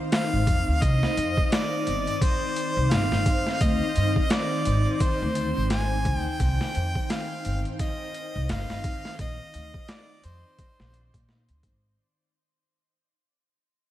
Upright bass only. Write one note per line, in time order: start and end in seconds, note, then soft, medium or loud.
0.34 0.46 G#1 medium
0.48 0.65 F2 medium
0.68 0.81 D2 medium
0.82 1.00 C2 loud
1.17 1.35 F2 medium
1.87 2.05 G1 medium
2.77 2.90 C2 loud
2.92 3.10 G1 medium
3.12 3.25 G1 medium
3.61 3.79 D2 medium
3.97 4.15 G2 medium
4.67 4.84 G#1 medium
5.22 5.52 D2 loud
5.57 6.07 G#1 medium
6.06 6.23 D2 loud
6.40 6.58 C2 loud
6.76 6.94 F2 medium
7.46 7.63 G1 medium
8.36 8.48 C2 loud
8.51 8.68 G1 medium
8.71 8.83 G1 medium
9.19 9.37 A#1 loud
9.55 9.72 D2 medium
10.25 10.42 F2 medium
10.80 11.10 A#1 loud
11.14 11.49 A#2 medium
11.50 11.65 D2 medium
11.64 11.95 G#1 medium